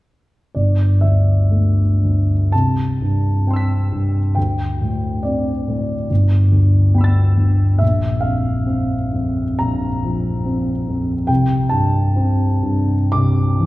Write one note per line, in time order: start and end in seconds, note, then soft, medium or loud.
0.55 2.48 G1 soft
0.55 1.02 D5 soft
1.01 1.80 D2 soft
1.01 2.51 E5 soft
1.50 2.32 A3 soft
2.03 2.54 D2 soft
2.52 4.33 C2 soft
2.52 4.37 A5 medium
3.02 3.75 G2 soft
3.47 4.19 C4 soft
3.47 4.33 G5 soft
3.47 4.35 C6 soft
3.53 4.36 E6 soft
3.53 4.38 B6 soft
3.92 4.37 G2 soft
4.35 6.06 D2 soft
4.35 5.23 G5 soft
4.81 5.50 A2 soft
5.23 5.93 C4 soft
5.23 7.38 D5 soft
5.68 6.10 A2 soft
6.10 7.78 G1 soft
6.51 7.20 D2 soft
6.94 7.64 B3 soft
6.94 7.77 G5 soft
6.94 7.79 B5 soft
7.01 7.81 E6 soft
7.01 7.82 A6 soft
7.37 7.81 D2 soft
7.79 9.56 A#1 soft
7.79 8.23 E5 medium
8.21 8.93 F2 soft
8.21 9.59 F5 soft
8.66 9.42 C4 soft
9.13 9.87 F2 soft
9.59 11.25 A#1 soft
9.59 11.28 A#5 medium
10.05 10.71 F3 soft
10.45 11.12 C4 soft
10.88 11.29 F2 soft
11.27 13.09 C2 soft
11.27 11.71 G5 medium
11.69 12.44 G2 soft
11.69 13.12 A5 medium
12.16 12.94 C4 soft
12.63 13.40 G2 soft
13.12 13.66 C2 soft
13.12 13.66 D6 medium
13.59 13.66 E3 soft